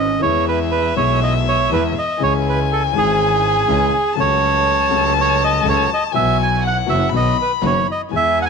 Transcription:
0.00 0.13 G#1 loud
0.00 0.13 G#1 medium
0.00 0.13 G#2 medium
0.00 0.12 E3 medium
0.00 0.13 B3 medium
0.00 0.13 C#4 loud
0.00 0.14 C#4 medium
0.00 0.20 C#4 medium
0.00 0.13 E4 medium
0.00 0.14 G#4 medium
0.00 0.13 B4 loud
0.00 0.21 D#5 loud
0.20 0.92 E2 medium
0.20 0.93 E2 medium
0.20 0.93 E3 medium
0.20 0.92 G#3 medium
0.20 0.93 B3 medium
0.20 0.92 E4 medium
0.20 0.93 G#4 medium
0.20 0.94 G#4 medium
0.20 0.45 C#5 loud
0.20 2.16 E5 medium
0.49 0.59 B4 medium
0.71 0.95 B4 medium
0.94 1.67 B1 medium
0.94 1.68 B1 loud
0.94 1.67 B2 medium
0.94 1.66 E3 medium
0.94 1.67 G#3 medium
0.94 1.67 B3 medium
0.94 1.68 B3 medium
0.94 1.67 E4 medium
0.94 1.67 G#4 medium
0.94 1.20 C#5 medium
0.98 1.68 G#4 medium
1.23 1.34 D#5 medium
1.48 1.70 C#5 medium
1.70 1.91 E2 medium
1.70 1.92 E2 loud
1.70 1.92 E3 medium
1.70 1.92 G#3 medium
1.70 1.91 B3 medium
1.70 1.92 B3 medium
1.70 1.92 E4 medium
1.70 1.92 G#4 medium
1.70 1.84 B4 medium
1.99 2.23 D#5 medium
2.18 2.90 C#2 medium
2.18 2.91 C#2 loud
2.18 2.91 C#3 medium
2.18 2.89 E3 medium
2.18 2.90 G#3 medium
2.18 2.91 C#4 medium
2.18 2.90 E4 medium
2.18 2.91 G#4 medium
2.18 4.13 G#5 loud
2.23 2.33 C#5 loud
2.49 2.59 B4 medium
2.72 2.83 A4 medium
2.92 3.64 G#1 medium
2.92 3.65 G#1 loud
2.92 3.64 G#2 medium
2.92 3.63 E3 medium
2.92 3.64 G#3 medium
2.92 3.64 C#4 medium
2.92 3.64 E4 medium
2.92 3.64 G#4 loud
2.92 3.65 G#4 medium
2.98 4.15 G#4 loud
3.68 3.89 C#2 medium
3.68 3.89 C#2 loud
3.68 3.89 C#3 loud
3.68 3.89 E3 medium
3.68 3.89 G#3 medium
3.68 3.89 C#4 medium
3.68 3.89 E4 medium
3.68 3.89 G#4 medium
4.15 4.87 C#2 medium
4.15 4.88 C#2 medium
4.15 4.87 C#3 medium
4.15 4.86 F#3 medium
4.15 4.87 A3 medium
4.15 4.87 C#4 medium
4.15 4.87 F#4 medium
4.15 4.88 A4 loud
4.15 6.14 A5 loud
4.19 4.88 A4 medium
4.19 5.13 C#5 loud
4.89 5.61 C#2 medium
4.89 5.61 C#2 loud
4.89 5.61 C#3 loud
4.89 5.60 F#3 medium
4.89 5.61 A3 medium
4.89 5.61 C#4 medium
4.89 5.61 F#4 medium
4.89 5.61 A4 loud
4.89 5.62 A4 medium
5.21 5.43 C#5 loud
5.44 5.67 D#5 loud
5.63 5.85 C#2 medium
5.63 5.85 C#2 loud
5.63 5.85 C#3 medium
5.63 5.85 F#3 medium
5.63 5.85 A3 medium
5.63 5.85 C#4 medium
5.63 5.85 F#4 medium
5.63 5.85 A4 medium
5.63 5.85 A4 loud
5.69 5.90 C#5 loud
5.94 6.04 D#5 loud
6.12 6.84 B1 medium
6.12 6.84 B2 loud
6.12 6.83 E3 medium
6.12 6.84 F#3 medium
6.12 6.84 B3 medium
6.12 6.84 E4 medium
6.12 6.84 F#4 medium
6.12 6.38 E5 loud
6.12 6.62 G#5 loud
6.16 6.85 F#4 medium
6.43 6.64 G#5 loud
6.62 7.12 F#5 medium
6.67 6.77 F#5 loud
6.86 7.08 F#1 medium
6.86 7.09 F#1 loud
6.86 7.08 F#2 medium
6.86 7.08 E3 medium
6.86 7.08 F#3 medium
6.86 7.08 B3 medium
6.86 7.08 E4 medium
6.86 7.08 F#4 medium
6.86 7.09 F#4 medium
6.86 7.11 E5 medium
7.10 7.33 B1 medium
7.10 7.34 B1 loud
7.10 7.33 B2 medium
7.10 7.33 D#3 medium
7.10 7.33 F#3 medium
7.10 7.33 B3 medium
7.10 7.33 D#4 medium
7.10 7.33 F#4 medium
7.10 7.85 B5 loud
7.16 7.37 D#5 loud
7.42 7.52 B4 medium
7.62 7.83 F#1 medium
7.62 7.83 F#2 medium
7.62 7.83 D#3 medium
7.62 7.83 F#3 medium
7.62 7.83 B3 medium
7.62 7.83 D#4 medium
7.62 7.83 F#4 medium
7.66 7.87 C#5 medium
7.92 8.02 D#5 medium
8.09 8.49 E2 medium
8.09 8.11 E3 medium
8.09 8.49 E3 medium
8.09 8.49 G#3 medium
8.09 8.49 B3 medium
8.09 8.49 E4 medium
8.09 8.49 G#4 medium
8.09 8.49 G#5 loud
8.13 8.49 G#4 medium
8.13 8.39 E5 loud
8.42 8.45 F#5 loud
8.42 8.49 G#5 medium

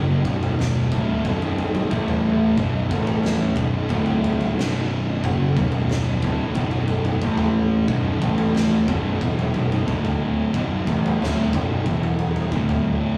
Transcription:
0.00 0.23 F#1 loud
0.00 0.23 F#2 medium
0.00 0.24 C#3 loud
0.00 0.24 F#3 loud
0.00 0.26 F#3 medium
0.24 0.88 B0 loud
0.24 0.90 B1 medium
0.24 0.91 F#2 loud
0.24 0.91 B2 loud
0.24 kick loud
0.24 floor tom medium
0.43 floor tom medium
0.59 snare medium
0.59 mid tom medium
0.91 1.23 D1 loud
0.91 1.24 D2 medium
0.91 1.24 A2 medium
0.91 1.24 D3 loud
0.91 kick loud
0.91 floor tom medium
1.24 1.87 B0 medium
1.24 1.91 B1 medium
1.24 1.91 F#2 loud
1.24 1.91 B2 loud
1.24 kick loud
1.24 floor tom medium
1.42 floor tom medium
1.58 floor tom medium
1.75 floor tom medium
1.91 2.54 A1 medium
1.91 2.56 A2 medium
1.91 2.56 E3 medium
1.91 2.57 A3 loud
1.91 kick loud
2.08 floor tom medium
2.08 mid tom medium
2.57 2.88 B0 medium
2.57 2.89 B1 loud
2.57 2.90 F#2 loud
2.57 2.90 B2 loud
2.57 kick loud
2.57 floor tom medium
2.90 3.53 A1 medium
2.90 3.56 A2 loud
2.90 3.56 E3 loud
2.90 3.56 A3 loud
2.90 kick loud
2.90 floor tom medium
3.07 floor tom medium
3.23 snare medium
3.23 mid tom medium
3.56 3.88 B0 loud
3.56 3.89 B1 medium
3.56 3.89 F#2 medium
3.56 3.90 B2 loud
3.56 kick loud
3.56 floor tom medium
3.89 4.53 D1 medium
3.89 4.55 D2 loud
3.89 4.55 A2 medium
3.89 4.55 D3 loud
3.89 kick loud
3.89 floor tom medium
4.06 floor tom medium
4.24 floor tom medium
4.41 floor tom medium
4.55 5.19 B0 medium
4.55 5.21 B1 medium
4.55 5.21 F#2 medium
4.55 5.22 B2 loud
4.59 snare medium
5.22 5.54 F#1 loud
5.22 5.55 F#2 medium
5.22 5.55 C#3 loud
5.22 5.55 F#3 loud
5.22 kick medium
5.22 floor tom medium
5.56 6.19 B0 medium
5.56 6.22 B1 medium
5.56 6.22 F#2 loud
5.56 6.22 B2 loud
5.56 kick loud
5.56 floor tom medium
5.56 mid tom medium
5.72 floor tom medium
5.90 snare medium
5.90 mid tom medium
6.22 6.54 D1 loud
6.22 6.55 D2 medium
6.22 6.55 A2 medium
6.22 6.55 D3 loud
6.22 kick loud
6.22 floor tom medium
6.55 7.18 B0 loud
6.55 7.21 B1 medium
6.55 7.22 F#2 medium
6.55 7.22 B2 loud
6.55 kick loud
6.55 floor tom medium
6.71 floor tom medium
6.88 floor tom medium
7.05 floor tom medium
7.22 7.84 A1 medium
7.22 7.87 A2 medium
7.22 7.88 E3 medium
7.22 7.88 A3 loud
7.22 kick loud
7.38 floor tom medium
7.38 mid tom medium
7.87 8.20 B0 medium
7.87 8.19 B1 loud
7.87 8.19 F#2 loud
7.87 8.20 B2 loud
7.87 kick loud
7.87 floor tom medium
8.20 8.84 A1 medium
8.20 8.86 A2 medium
8.20 8.86 E3 loud
8.20 8.87 A3 loud
8.20 kick medium
8.20 floor tom medium
8.38 floor tom medium
8.55 snare medium
8.55 mid tom medium
8.87 9.19 B0 medium
8.87 9.20 B1 medium
8.87 9.20 F#2 medium
8.87 9.20 B2 medium
8.87 kick loud
8.87 floor tom medium
9.21 9.52 E1 loud
9.21 9.53 E2 loud
9.21 9.53 B2 loud
9.21 9.54 E3 loud
9.21 kick medium
9.21 floor tom medium
9.39 floor tom medium
9.53 9.86 B0 medium
9.53 9.85 B1 medium
9.53 9.84 F#2 medium
9.53 9.85 B2 loud
9.53 floor tom medium
9.72 floor tom medium
9.85 10.50 D1 medium
9.85 10.52 D2 medium
9.85 10.52 A2 medium
9.85 10.52 D3 loud
9.85 kick loud
10.05 floor tom medium
10.05 mid tom medium
10.53 10.85 B0 medium
10.53 10.86 B1 medium
10.53 10.86 F#2 medium
10.53 10.86 B2 loud
10.53 kick loud
10.53 floor tom medium
10.86 11.18 A1 loud
10.86 11.19 A2 loud
10.86 11.19 E3 medium
10.86 11.19 A3 loud
10.86 kick loud
10.86 floor tom medium
11.06 floor tom medium
11.19 11.51 D1 medium
11.19 11.52 D2 medium
11.19 11.52 A2 medium
11.19 11.52 D3 loud
11.19 mid tom medium
11.24 snare medium
11.53 11.84 B0 medium
11.53 11.85 B1 medium
11.53 11.86 F#2 medium
11.53 11.86 B2 loud
11.53 kick loud
11.53 floor tom medium
11.86 12.48 E1 medium
11.86 12.52 E2 loud
11.86 12.52 B2 loud
11.86 12.52 E3 loud
11.86 kick loud
11.86 floor tom medium
12.03 floor tom medium
12.19 floor tom medium
12.36 floor tom medium
12.52 13.14 D1 loud
12.52 13.18 D2 medium
12.52 13.18 A2 loud
12.52 13.18 D3 loud
12.52 kick loud
12.69 floor tom medium
12.69 mid tom medium

